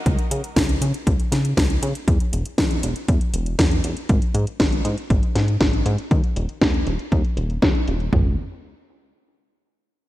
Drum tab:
HH |xxxxxxxxxxxxxxxx|xxxxxxxxxxxxxxxx|xxxxxxxxxxxxxxxx|xxxxxxxxxxxxxxxx|
SD |----o-----o-o---|----o-------o---|----o-----o-o---|----o-------o---|
FT |----------------|----------------|----------------|----------------|
BD |o---o---o---o---|o---o---o---o---|o---o---o---o---|o---o---o---o---|

HH |----------------|
SD |----------------|
FT |o---------------|
BD |o---------------|